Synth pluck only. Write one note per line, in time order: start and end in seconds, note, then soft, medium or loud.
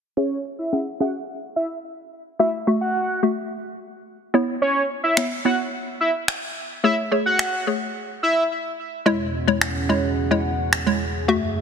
0.17 0.46 C#4 medium
0.17 0.46 G#4 medium
0.17 0.46 E5 medium
0.73 0.87 C#4 medium
0.73 0.87 G#4 medium
0.73 0.87 F#5 medium
1.00 1.58 C#4 medium
1.00 1.59 G#4 medium
1.00 1.59 E5 medium
2.39 2.54 A3 medium
2.39 2.54 F#4 medium
2.39 2.54 E5 medium
2.67 2.96 A3 medium
2.67 2.96 F#4 medium
2.67 2.96 E5 medium
3.23 3.81 A3 medium
3.23 3.81 F#4 medium
3.23 3.81 E5 medium
4.34 5.01 B3 medium
4.34 5.01 E4 medium
4.34 5.01 C#5 medium
5.17 5.32 B3 medium
5.17 5.32 E4 medium
5.17 5.32 C#5 medium
5.45 6.03 B3 medium
5.45 6.03 E4 medium
5.45 6.03 C#5 medium
6.84 6.98 A3 medium
6.84 6.98 G#4 medium
6.84 6.99 C#5 medium
7.12 7.41 A3 medium
7.12 7.41 G#4 medium
7.12 7.41 C#5 medium
7.67 8.25 A3 medium
7.67 8.25 G#4 medium
7.67 8.25 C#5 medium
9.06 9.28 G#3 medium
9.06 9.28 E4 medium
9.06 9.28 C#5 loud
9.48 9.69 G#3 medium
9.48 9.69 E4 medium
9.48 9.70 C#5 loud
9.89 10.11 G#3 medium
9.89 10.11 E4 medium
9.89 10.11 C#5 loud
10.31 10.60 G#3 medium
10.31 10.60 E4 medium
10.31 10.60 C#5 medium
10.87 11.08 G#3 medium
10.87 11.08 E4 medium
10.87 11.09 C#5 loud
11.28 11.50 A3 medium
11.28 11.50 F#4 medium
11.28 11.50 E5 loud